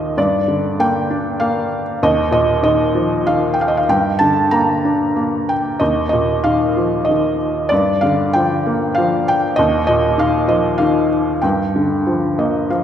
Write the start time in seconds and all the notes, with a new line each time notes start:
Already playing: D#2 A#2 D#3 F3 D#5 F5
0.17 G2 D5
0.48 D3
0.79 A#3 G5
1.10 D4
1.40 A#3 F5
2.03 D#2 D#5
2.31 A#2 D#5
2.63 D#3 D#5
2.95 F3
3.27 D#3 F5
3.54 G5
3.61 F5
3.68 D#5
3.77 F5
3.89 G2 G5
4.19 D3 A5
4.51 A#3 A#5
4.85 D4
5.16 A#3
5.49 G5
5.80 D#2 D#5
6.09 A#2 D#5
6.44 D#3 F5
6.76 F3
7.05 D#5
7.09 D#3
7.69 G2 D5
8.01 D3 F5
8.33 F3 G5
8.66 A#3
8.95 F3 F5
9.28 G5
9.56 D#2 D#5
9.87 A#2 D#5
10.18 D#3 F5
10.48 F3 D#5
10.78 D#3 F5
11.42 G2 G5
11.76 D3
12.07 F3
12.38 A#3 D#5
12.70 F3 F5